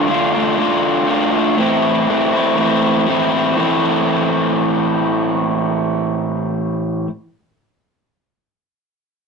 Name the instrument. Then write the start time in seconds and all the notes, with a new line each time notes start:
overdriven electric guitar
0.08 D3 A3 D4 F4
0.33 A3 D4 F4
0.56 D3 A3 D4 F4
1.07 D3 A3 D4 F4
1.33 D4 F4
1.37 A3
1.57 A2 E3 A3 C4
1.61 E4
2.08 E3 A3 C4 E4
2.33 A3 C4 E4
2.57 E3 A3 C4
2.61 E4
3.07 A2 E3 A3 C4 E4
3.31 C4 E4
3.35 A3
3.56 A2 E3 A3 C4
3.60 E4